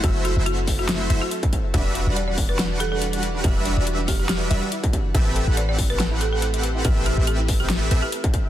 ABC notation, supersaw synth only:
X:1
M:4/4
L:1/16
Q:"Swing 16ths" 1/4=141
K:Ador
V:1 name="Supersaw synth"
[A,EFce]3 [A,EFce]6- [A,EFce] [A,EFce] z4 z | [G,DFBe]3 [G,DFBf]12- [G,DFBf] | [G,DFBe]3 [G,DFBe]6- [G,DFBe] [G,DFBe] z4 z | [CGABe]3 [CGABf]12- [CGABf] |
[CGABe]3 [CGABe]6- [CGABe] [CGABe] z4 z |]